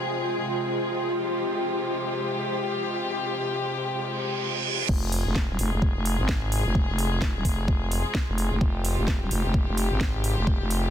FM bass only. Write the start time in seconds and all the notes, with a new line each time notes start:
4.89 F1
5.26 F1
5.49 D#1
5.59 F1
5.73 F1
5.96 F1
6.19 G#1
6.66 F1
6.89 F1
7.22 F1
7.36 D#1
7.45 F1
7.68 F1
8.29 F1
8.52 F1
8.61 F1
8.98 F1
9.22 D#1
9.31 F1
9.45 F1
9.68 F1
9.91 G#1
10.38 F1
10.61 F1